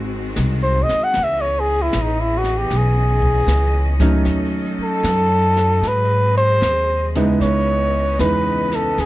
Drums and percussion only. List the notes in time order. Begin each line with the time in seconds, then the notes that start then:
0.36 snare, hi-hat pedal
0.89 snare
1.14 brush sweep, snare
1.93 snare, hi-hat pedal
2.44 snare
2.70 brush sweep, snare
3.22 kick
3.48 snare, hi-hat pedal
4.00 kick, snare
4.25 brush sweep, snare
5.04 snare, hi-hat pedal
5.57 snare
5.83 brush sweep, snare
6.62 snare, hi-hat pedal
7.15 snare
7.41 brush sweep, snare
8.19 snare, hi-hat pedal
8.71 snare
8.98 brush sweep, snare